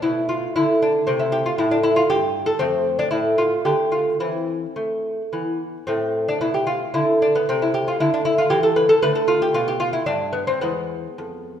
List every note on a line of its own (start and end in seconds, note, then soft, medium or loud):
0.00 0.46 B2 soft
0.00 1.04 A3 soft
0.00 0.28 E4 medium
0.29 0.55 F4 medium
0.56 0.98 D3 medium
0.56 0.81 E4 medium
0.82 1.07 D4 medium
1.07 1.49 C3 medium
1.07 2.56 A3 soft
1.07 1.20 C4 medium
1.19 1.33 E4 medium
1.32 1.46 G4 medium
1.46 1.58 F4 medium
1.58 2.00 A2 medium
1.58 1.71 E4 medium
1.71 1.83 D4 medium
1.83 1.96 E4 medium
1.96 2.09 F4 medium
2.10 2.50 G2 medium
2.10 2.46 G4 medium
2.46 2.60 A4 medium
2.59 3.02 F2 medium
2.59 3.62 A3 soft
2.59 2.97 C4 medium
2.99 3.10 D4 medium
3.11 3.55 A2 medium
3.11 3.37 E4 medium
3.38 3.65 F4 medium
3.65 4.10 D3 medium
3.65 4.17 A3 soft
3.65 3.92 G4 medium
3.92 4.19 F4 medium
4.20 4.65 E3 soft
4.20 5.28 C4 soft
4.20 5.56 E4 medium
4.76 5.21 A3 soft
5.33 5.77 E3 soft
5.33 5.84 B3 soft
5.87 6.31 A2 medium
5.87 7.45 A3 soft
5.87 6.26 C4 medium
6.28 6.41 D4 medium
6.41 6.84 B2 soft
6.41 6.55 E4 medium
6.54 6.68 G4 medium
6.67 6.93 F4 medium
6.94 7.38 D3 medium
6.94 7.21 E4 medium
7.22 7.36 D4 medium
7.35 7.49 B3 medium
7.49 7.91 C3 medium
7.49 9.00 A3 soft
7.49 7.62 C4 medium
7.62 7.75 E4 medium
7.74 7.88 G4 medium
7.88 8.00 F4 medium
8.00 8.42 D3 medium
8.00 8.13 E4 medium
8.14 8.25 D4 medium
8.25 8.38 E4 medium
8.38 8.52 F4 medium
8.50 8.92 E3 medium
8.50 8.63 G4 medium
8.63 8.76 A4 medium
8.76 8.89 B4 medium
8.89 9.02 A4 medium
9.02 9.45 D3 medium
9.02 10.58 A3 soft
9.02 9.15 B4 loud
9.15 9.29 A4 medium
9.28 9.42 F4 medium
9.42 9.55 G4 medium
9.54 9.97 B2 medium
9.54 9.68 F4 medium
9.68 9.81 G4 medium
9.80 9.93 F4 medium
9.93 10.06 E4 medium
10.06 10.51 G2 medium
10.06 10.33 D4 medium
10.33 10.47 B3 medium
10.47 10.62 C4 medium
10.61 11.07 E2 medium
10.61 11.60 G#3 soft
10.61 11.60 B3 medium
11.18 11.60 F2 soft